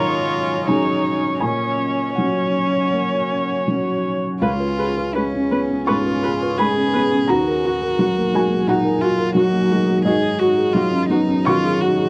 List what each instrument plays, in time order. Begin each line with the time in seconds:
Already playing: felt piano G#2 D#3 F#3 C#4 G#4 D#5 A#5, ambient pad F#3 C#4 D#5, cello F4, viola C#5
0.67 felt piano F#3 C#4 G#4 G#5, cello D#4, viola C#5
1.40 felt piano A#2 G#5, cello C#4, ambient pad F#4 C#5, viola C#5
2.15 felt piano F#3 C#4 F#4 F#5, viola C#5
2.92 felt piano A#3
3.68 felt piano F#3 C#4 F#4
4.41 felt piano C#2 F5, ambient pad C#4 G#4 B4, cello F4, viola B4
4.60 felt piano B4
4.78 felt piano G#4, viola B4
4.97 felt piano B4
5.15 felt piano G#3, cello C#4, viola B4
5.34 felt piano C#4
5.51 felt piano B3, viola B4
5.71 felt piano C#4
5.87 felt piano G#2 C#6, cello F4, viola B4
6.07 felt piano B4
6.23 felt piano G#4, viola B4
6.42 felt piano B4
6.58 felt piano G#3 B5, cello G#4, viola B4
6.77 felt piano C#4
6.93 felt piano B3, viola B4
7.12 felt piano C#4
7.28 felt piano D#2 A#5, ambient pad F#3 D#4 A#4, viola F#4, cello F#4
7.48 felt piano A#4
7.64 felt piano F#4, viola F#4
7.82 felt piano A#4
7.99 felt piano F#3, viola F#4
8.18 felt piano A#3
8.34 felt piano G#3 G#5, viola F#4
8.51 felt piano A#3
8.67 felt piano A#2 F#5, cello D#4, viola F#4
8.84 felt piano A#4
9.01 cello F4, felt piano F#4, viola F#4
9.18 felt piano A#4
9.35 felt piano F#3, cello F#4, viola F#4
9.53 felt piano A#3
9.71 felt piano G#3, viola F#4
9.87 felt piano A#3
10.04 felt piano G#2 D#5, viola F#4, cello G#4, ambient pad C#5
10.22 felt piano G#4
10.39 cello F#4, felt piano F#4, viola F#4
10.58 felt piano G#4
10.73 felt piano F#3, cello F4, viola F#4
10.91 felt piano C#4
11.10 felt piano B3, cello D#4, viola F#4
11.29 felt piano C#4
11.45 felt piano D#3 C#6, cello F4, viola F#4
11.64 felt piano G#4
11.81 felt piano F#4, cello F#4, viola F#4
11.97 felt piano G#4